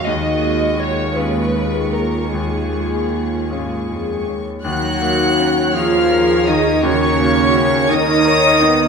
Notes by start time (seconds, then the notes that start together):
Already playing: G#3 F#4 G#4 C#5
0.06 D#2 D#3 G#3 D#5 C#6
0.43 G#3
0.79 F4 C#5
1.16 G#3 C#4 F4 B4
1.55 G#4
1.94 A#4 C#5
2.33 D#2 D#3 G#4
2.73 G#3
3.12 F4
3.50 G#2 G#3 C#4 F4 C#5
3.89 F2 G#4
4.28 D#2 C#5
4.64 D#2 D#3 F#3 F#4 A#4 C#5 F#5 F#6
5.02 A#3 D#4
5.38 C#4 C#5
5.74 F3 D#4 F4 G#4 D#5 F5 F6
6.12 A#4 A#5
6.46 D#3 D#4 D#5 D#6
6.82 D#2 C#3 D#3 C#4 F#4 C#5 C#6
7.19 A#3 C#4
7.55 C#4 C#5
7.89 D#3 D#4 A#4 D#5 D#6
8.25 A#4 C#5
8.61 B3 D#4